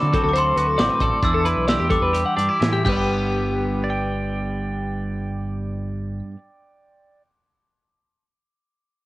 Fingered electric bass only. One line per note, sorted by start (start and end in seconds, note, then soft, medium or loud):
0.02 0.12 D3 medium
0.24 0.54 D2 loud
0.56 0.76 D2 medium
0.78 0.88 A1 medium
1.01 1.10 A1 medium
1.23 1.53 E2 medium
1.56 1.77 B1 medium
1.80 2.00 E2 medium
2.02 2.23 E2 medium
2.37 2.48 G2 medium
2.61 2.85 A2 medium
2.86 6.20 G1 medium